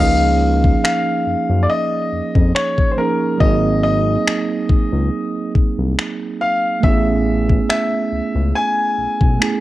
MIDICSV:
0, 0, Header, 1, 5, 480
1, 0, Start_track
1, 0, Key_signature, -5, "major"
1, 0, Tempo, 857143
1, 1907, Time_signature, 4, 2, 24, 8
1, 5377, End_track
2, 0, Start_track
2, 0, Title_t, "Grand piano"
2, 0, Program_c, 0, 0
2, 0, Note_on_c, 0, 77, 106
2, 462, Note_off_c, 0, 77, 0
2, 470, Note_on_c, 0, 77, 93
2, 911, Note_on_c, 0, 74, 70
2, 926, Note_off_c, 0, 77, 0
2, 947, Note_off_c, 0, 74, 0
2, 950, Note_on_c, 0, 75, 92
2, 1406, Note_off_c, 0, 75, 0
2, 1427, Note_on_c, 0, 73, 89
2, 1617, Note_off_c, 0, 73, 0
2, 1632, Note_on_c, 0, 72, 58
2, 1668, Note_off_c, 0, 72, 0
2, 1668, Note_on_c, 0, 70, 79
2, 1891, Note_off_c, 0, 70, 0
2, 1906, Note_on_c, 0, 75, 99
2, 2130, Note_off_c, 0, 75, 0
2, 2147, Note_on_c, 0, 75, 100
2, 3084, Note_off_c, 0, 75, 0
2, 3590, Note_on_c, 0, 77, 93
2, 3812, Note_off_c, 0, 77, 0
2, 3829, Note_on_c, 0, 76, 92
2, 4301, Note_off_c, 0, 76, 0
2, 4309, Note_on_c, 0, 76, 94
2, 4790, Note_on_c, 0, 80, 103
2, 4802, Note_off_c, 0, 76, 0
2, 5377, Note_off_c, 0, 80, 0
2, 5377, End_track
3, 0, Start_track
3, 0, Title_t, "Tine electric piano"
3, 0, Program_c, 1, 4
3, 0, Note_on_c, 1, 53, 62
3, 0, Note_on_c, 1, 58, 57
3, 0, Note_on_c, 1, 61, 60
3, 7, Note_on_c, 1, 63, 59
3, 17, Note_on_c, 1, 68, 69
3, 100, Control_c, 1, 64, 127
3, 1638, Note_off_c, 1, 53, 0
3, 1643, Note_off_c, 1, 58, 0
3, 1649, Note_off_c, 1, 61, 0
3, 1655, Note_off_c, 1, 63, 0
3, 1660, Note_off_c, 1, 68, 0
3, 1663, Note_on_c, 1, 53, 49
3, 1668, Note_on_c, 1, 58, 44
3, 1674, Note_on_c, 1, 61, 45
3, 1679, Note_on_c, 1, 63, 46
3, 1685, Note_on_c, 1, 68, 50
3, 1890, Note_on_c, 1, 54, 63
3, 1895, Note_off_c, 1, 58, 0
3, 1902, Note_on_c, 1, 58, 56
3, 1905, Note_off_c, 1, 53, 0
3, 1910, Note_off_c, 1, 61, 0
3, 1913, Note_off_c, 1, 63, 0
3, 1913, Note_on_c, 1, 60, 59
3, 1915, Control_c, 1, 64, 0
3, 1916, Note_off_c, 1, 68, 0
3, 1924, Note_on_c, 1, 63, 59
3, 1935, Note_on_c, 1, 68, 72
3, 2026, Control_c, 1, 64, 127
3, 3796, Note_off_c, 1, 54, 0
3, 3802, Note_off_c, 1, 58, 0
3, 3807, Note_off_c, 1, 60, 0
3, 3811, Note_on_c, 1, 57, 60
3, 3813, Note_off_c, 1, 63, 0
3, 3818, Note_off_c, 1, 68, 0
3, 3822, Note_on_c, 1, 59, 60
3, 3832, Note_on_c, 1, 61, 58
3, 3835, Control_c, 1, 64, 0
3, 3844, Note_on_c, 1, 64, 56
3, 3854, Note_on_c, 1, 68, 72
3, 3938, Control_c, 1, 64, 127
3, 5237, Note_off_c, 1, 57, 0
3, 5242, Note_off_c, 1, 59, 0
3, 5247, Note_off_c, 1, 61, 0
3, 5253, Note_off_c, 1, 64, 0
3, 5258, Note_off_c, 1, 68, 0
3, 5260, Note_on_c, 1, 57, 51
3, 5266, Note_on_c, 1, 59, 47
3, 5270, Note_on_c, 1, 61, 45
3, 5277, Note_on_c, 1, 64, 46
3, 5281, Note_on_c, 1, 68, 53
3, 5377, Note_off_c, 1, 57, 0
3, 5377, Note_off_c, 1, 59, 0
3, 5377, Note_off_c, 1, 61, 0
3, 5377, Note_off_c, 1, 64, 0
3, 5377, Note_off_c, 1, 68, 0
3, 5377, End_track
4, 0, Start_track
4, 0, Title_t, "Analog synth bass"
4, 0, Program_c, 2, 38
4, 0, Note_on_c, 2, 37, 105
4, 416, Note_off_c, 2, 37, 0
4, 708, Note_on_c, 2, 42, 45
4, 760, Note_off_c, 2, 42, 0
4, 836, Note_on_c, 2, 42, 81
4, 935, Note_off_c, 2, 42, 0
4, 1189, Note_on_c, 2, 41, 46
4, 1241, Note_off_c, 2, 41, 0
4, 1317, Note_on_c, 2, 41, 85
4, 1415, Note_off_c, 2, 41, 0
4, 1906, Note_on_c, 2, 32, 104
4, 2335, Note_off_c, 2, 32, 0
4, 2628, Note_on_c, 2, 37, 47
4, 2680, Note_off_c, 2, 37, 0
4, 2756, Note_on_c, 2, 37, 91
4, 2855, Note_off_c, 2, 37, 0
4, 3109, Note_on_c, 2, 36, 50
4, 3160, Note_off_c, 2, 36, 0
4, 3238, Note_on_c, 2, 36, 85
4, 3336, Note_off_c, 2, 36, 0
4, 3826, Note_on_c, 2, 33, 105
4, 4255, Note_off_c, 2, 33, 0
4, 4546, Note_on_c, 2, 37, 47
4, 4598, Note_off_c, 2, 37, 0
4, 4675, Note_on_c, 2, 37, 88
4, 4774, Note_off_c, 2, 37, 0
4, 5028, Note_on_c, 2, 35, 48
4, 5079, Note_off_c, 2, 35, 0
4, 5156, Note_on_c, 2, 35, 83
4, 5255, Note_off_c, 2, 35, 0
4, 5377, End_track
5, 0, Start_track
5, 0, Title_t, "Drums"
5, 359, Note_on_c, 9, 36, 86
5, 415, Note_off_c, 9, 36, 0
5, 475, Note_on_c, 9, 26, 111
5, 531, Note_off_c, 9, 26, 0
5, 1317, Note_on_c, 9, 36, 88
5, 1373, Note_off_c, 9, 36, 0
5, 1434, Note_on_c, 9, 26, 104
5, 1490, Note_off_c, 9, 26, 0
5, 1557, Note_on_c, 9, 36, 74
5, 1613, Note_off_c, 9, 36, 0
5, 1906, Note_on_c, 9, 36, 105
5, 1962, Note_off_c, 9, 36, 0
5, 2393, Note_on_c, 9, 26, 112
5, 2449, Note_off_c, 9, 26, 0
5, 2628, Note_on_c, 9, 36, 95
5, 2684, Note_off_c, 9, 36, 0
5, 3109, Note_on_c, 9, 36, 91
5, 3165, Note_off_c, 9, 36, 0
5, 3353, Note_on_c, 9, 26, 106
5, 3409, Note_off_c, 9, 26, 0
5, 3827, Note_on_c, 9, 36, 101
5, 3883, Note_off_c, 9, 36, 0
5, 4197, Note_on_c, 9, 36, 86
5, 4253, Note_off_c, 9, 36, 0
5, 4313, Note_on_c, 9, 26, 117
5, 4369, Note_off_c, 9, 26, 0
5, 5157, Note_on_c, 9, 36, 84
5, 5213, Note_off_c, 9, 36, 0
5, 5274, Note_on_c, 9, 26, 107
5, 5330, Note_off_c, 9, 26, 0
5, 5377, End_track
0, 0, End_of_file